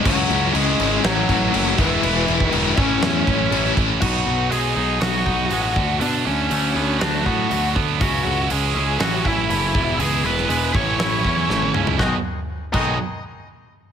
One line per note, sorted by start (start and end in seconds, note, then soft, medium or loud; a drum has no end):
0.04 0.25 C#2 loud
0.04 0.52 C#3 loud
0.04 0.52 F#3 medium
0.04 0.30 G#3 loud
0.04 0.29 C#4 loud
0.04 0.28 E4 medium
0.04 0.54 F#4 loud
0.04 kick loud
0.04 crash loud
0.28 0.49 C#2 loud
0.28 0.53 G#3 medium
0.28 0.54 C#4 medium
0.28 0.55 E4 medium
0.28 crash medium
0.53 0.74 C#2 medium
0.53 1.02 C#3 medium
0.53 0.79 G#3 loud
0.53 1.01 G#3 medium
0.53 0.78 C#4 loud
0.53 0.78 E4 loud
0.53 1.00 G#4 loud
0.53 crash medium
0.78 0.99 G#1 loud
0.78 1.03 G#3 medium
0.78 1.03 C#4 medium
0.78 1.05 E4 medium
0.78 crash medium
1.03 1.24 A1 loud
1.03 1.53 A2 medium
1.03 1.51 E3 medium
1.03 1.75 F#3 medium
1.03 1.29 A3 loud
1.03 1.28 C#4 loud
1.03 1.26 E4 loud
1.03 1.74 F#4 loud
1.03 snare loud
1.03 crash medium
1.28 1.48 A1 loud
1.28 1.52 A3 medium
1.28 1.52 C#4 medium
1.28 1.53 E4 medium
1.28 kick medium
1.28 crash medium
1.52 1.73 F#1 loud
1.52 1.76 A2 medium
1.52 1.76 E3 medium
1.52 1.76 A3 medium
1.52 1.77 C#4 medium
1.52 1.75 E4 medium
1.52 crash medium
1.77 1.98 E1 medium
1.77 2.00 E3 medium
1.77 2.74 E3 medium
1.77 2.01 G#3 medium
1.77 2.02 B3 medium
1.77 2.03 E4 medium
1.77 2.47 E4 medium
1.77 kick loud
1.77 crash medium
2.02 2.23 E1 loud
2.02 2.50 E3 loud
2.02 2.27 G#3 loud
2.02 2.26 B3 medium
2.02 2.25 E4 loud
2.02 crash medium
2.26 2.48 E1 medium
2.26 2.50 G#3 medium
2.26 2.52 B3 medium
2.26 2.52 E4 medium
2.26 crash medium
2.40 kick medium
2.47 2.81 D#4 medium
2.51 2.72 E1 medium
2.51 2.75 E3 medium
2.51 2.75 G#3 loud
2.51 2.76 B3 medium
2.51 2.75 E4 loud
2.51 crash medium
2.77 2.97 A1 medium
2.77 3.53 A2 medium
2.77 3.51 E3 medium
2.77 3.28 A3 medium
2.77 3.27 C#4 medium
2.77 3.73 C#4 medium
2.77 3.26 E4 medium
2.77 3.73 C#5 medium
2.77 kick loud
2.77 crash medium
3.02 3.22 E2 medium
3.02 snare loud
3.02 crash medium
3.27 3.47 A1 medium
3.27 3.52 A3 medium
3.27 3.53 C#4 medium
3.27 3.53 E4 medium
3.27 kick medium
3.27 crash medium
3.50 3.71 A1 loud
3.50 3.99 A2 medium
3.50 4.00 E3 medium
3.50 4.01 A3 medium
3.50 4.01 C#4 medium
3.50 crash medium
3.54 4.01 E4 medium
3.65 snare soft
3.76 3.97 A1 medium
3.76 4.01 A3 medium
3.76 4.00 C#4 medium
3.76 4.00 E4 medium
3.76 kick medium
3.76 crash medium
4.00 4.25 B1 medium
4.00 4.50 B2 medium
4.00 4.27 F#3 medium
4.00 4.26 B3 medium
4.00 4.25 D#4 loud
4.00 4.48 F#4 medium
4.00 4.52 F#5 loud
4.00 kick loud
4.00 crash loud
4.26 4.49 B1 medium
4.26 4.51 F#3 medium
4.26 4.52 B3 medium
4.26 4.52 D#4 medium
4.51 4.74 B1 medium
4.51 4.77 B2 medium
4.51 4.77 F#3 medium
4.51 5.50 G#3 medium
4.51 4.76 B3 medium
4.51 4.75 D#4 medium
4.51 4.98 G#4 medium
4.51 4.98 G#5 medium
4.51 open hi-hat medium
4.76 4.99 B1 medium
4.76 5.00 B2 medium
4.76 5.01 F#3 medium
4.76 5.01 B3 medium
4.76 5.02 D#4 medium
5.01 5.24 B1 medium
5.01 5.27 B2 medium
5.01 5.26 F#3 medium
5.01 5.25 B3 medium
5.01 5.25 D#4 medium
5.01 5.76 F#4 medium
5.01 5.97 F#4 medium
5.01 6.04 F#5 loud
5.01 snare medium
5.01 open hi-hat medium
5.26 5.49 B1 medium
5.26 5.50 B2 medium
5.26 5.51 F#3 medium
5.26 5.51 B3 medium
5.26 5.52 D#4 medium
5.26 kick medium
5.50 5.74 A1 medium
5.50 5.75 B2 medium
5.50 5.75 F#3 medium
5.50 5.76 G#3 medium
5.50 5.75 B3 medium
5.50 5.75 D#4 medium
5.50 open hi-hat medium
5.76 5.99 D2 medium
5.76 6.00 D3 medium
5.76 6.01 F#3 medium
5.76 6.01 A3 medium
5.76 6.02 D4 medium
5.76 kick loud
6.01 6.24 B2 medium
6.01 6.49 D3 medium
6.01 6.26 F#3 medium
6.01 6.26 A3 loud
6.01 6.24 D4 medium
6.01 6.27 D5 medium
6.01 open hi-hat medium
6.26 6.49 D2 medium
6.26 6.50 F#3 medium
6.26 6.50 A3 medium
6.26 6.97 C#4 medium
6.26 6.51 D4 medium
6.26 7.01 C#5 medium
6.50 6.74 D2 medium
6.50 6.76 D3 medium
6.50 6.76 F#3 medium
6.50 6.75 A3 medium
6.50 6.74 D4 medium
6.50 open hi-hat medium
6.75 6.98 D2 medium
6.75 6.99 D3 medium
6.75 7.00 F#3 medium
6.75 7.00 A3 medium
6.75 7.24 B3 medium
6.75 7.01 D4 medium
7.00 7.24 D2 medium
7.00 7.26 D3 medium
7.00 7.25 F#3 medium
7.00 7.24 A3 medium
7.00 7.23 D4 medium
7.00 7.25 D4 medium
7.00 8.00 F#4 medium
7.00 7.24 D5 medium
7.00 snare loud
7.00 open hi-hat soft
7.25 7.49 A2 medium
7.25 7.48 D3 medium
7.25 7.50 F#3 medium
7.25 7.50 A3 medium
7.25 7.74 B3 medium
7.25 7.51 D4 medium
7.25 7.72 F#4 medium
7.25 7.72 F#5 medium
7.25 kick medium
7.50 7.74 D2 medium
7.50 7.98 D3 medium
7.50 7.76 F#3 medium
7.50 7.75 A3 medium
7.50 7.74 D4 medium
7.50 open hi-hat medium
7.75 7.99 D2 medium
7.75 8.00 F#3 medium
7.75 7.99 A3 medium
7.75 8.00 B3 medium
7.75 7.99 D4 medium
7.75 kick medium
7.99 8.23 C#2 medium
7.99 8.49 C#3 medium
7.99 8.26 G#3 medium
7.99 8.25 C#4 loud
7.99 8.25 E4 loud
7.99 8.47 F#4 medium
7.99 8.47 F#5 medium
7.99 kick loud
7.99 open hi-hat medium
8.25 8.48 C#2 medium
8.25 8.50 G#3 medium
8.25 8.50 C#4 medium
8.25 8.52 E4 medium
8.50 8.73 C#2 medium
8.50 8.76 C#3 medium
8.50 8.76 G#3 medium
8.50 8.75 C#4 medium
8.50 8.75 E4 medium
8.50 8.97 G#4 medium
8.50 9.00 G#5 medium
8.50 open hi-hat medium
8.75 8.98 C#2 medium
8.75 9.00 C#3 medium
8.75 8.99 G#3 medium
8.75 8.99 C#4 medium
8.75 9.01 E4 medium
9.00 9.23 A1 medium
9.00 9.25 A2 loud
9.00 9.25 E3 medium
9.00 9.25 A3 medium
9.00 9.24 C#4 loud
9.00 9.24 E4 loud
9.00 9.23 F#4 medium
9.00 9.26 F#5 medium
9.00 snare loud
9.00 open hi-hat medium
9.25 9.48 A1 medium
9.25 9.74 A2 medium
9.25 9.48 E3 medium
9.25 9.49 A3 medium
9.25 9.50 C#4 medium
9.25 9.50 E4 loud
9.25 9.96 E4 medium
9.25 10.03 E5 loud
9.25 kick medium
9.49 9.72 F#1 loud
9.49 9.73 E3 medium
9.49 9.73 A3 medium
9.49 9.74 C#4 medium
9.49 9.73 E4 medium
9.49 open hi-hat medium
9.74 9.97 E1 medium
9.74 9.99 E2 medium
9.74 9.98 E3 medium
9.74 9.98 G#3 medium
9.74 9.99 B3 medium
9.74 9.99 E4 medium
9.74 kick loud
9.99 10.22 C#2 medium
9.99 10.74 E2 medium
9.99 10.47 E3 medium
9.99 10.25 G#3 loud
9.99 10.24 B3 loud
9.99 10.23 E4 loud
9.99 10.23 G#4 medium
9.99 10.26 G#5 loud
9.99 open hi-hat medium
10.24 10.47 E1 medium
10.24 10.48 G#3 medium
10.24 10.48 B3 medium
10.24 10.49 E4 medium
10.24 10.71 B4 medium
10.24 10.76 B5 loud
10.38 snare soft
10.48 10.72 E1 medium
10.48 10.72 E3 medium
10.48 10.72 G#3 medium
10.48 10.73 B3 medium
10.48 10.72 E4 medium
10.48 open hi-hat medium
10.73 10.97 A1 medium
10.73 11.24 A2 medium
10.73 10.97 E3 medium
10.73 10.98 A3 medium
10.73 10.98 C#4 medium
10.73 10.99 E4 medium
10.73 11.70 C#5 medium
10.73 11.71 C#6 medium
10.73 kick loud
10.98 11.22 A1 medium
10.98 11.24 E3 medium
10.98 11.23 A3 medium
10.98 11.23 C#4 medium
10.98 11.22 E4 medium
10.98 snare loud
10.98 open hi-hat soft
11.23 11.47 E2 medium
11.23 11.74 A2 medium
11.23 11.47 E3 medium
11.23 11.48 A3 medium
11.23 11.49 C#4 medium
11.23 11.49 E4 medium
11.23 kick medium
11.49 11.72 A1 loud
11.49 11.97 E3 medium
11.49 11.75 A3 medium
11.49 11.73 C#4 medium
11.49 11.72 E4 medium
11.49 snare medium
11.62 high tom medium
11.74 11.97 C#2 medium
11.74 11.98 A3 medium
11.74 11.98 C#4 medium
11.74 11.97 E4 medium
11.74 mid tom medium
11.87 floor tom loud
11.98 12.13 B1 loud
11.98 12.13 B2 medium
11.98 12.13 D#3 loud
11.98 12.14 F#3 loud
11.98 12.14 G#3 medium
11.98 12.14 B3 loud
11.98 12.14 D#4 loud
11.98 12.14 F#4 loud
11.98 12.13 D#5 loud
11.98 kick loud
11.98 snare medium
12.73 12.97 B1 loud
12.73 12.93 B2 medium
12.73 12.93 D#3 loud
12.73 12.94 F#3 loud
12.73 12.93 G#3 loud
12.73 12.94 B3 loud
12.73 12.94 D#4 loud
12.73 12.94 F#4 medium
12.73 12.96 D#5 medium
12.73 kick loud
12.73 crash medium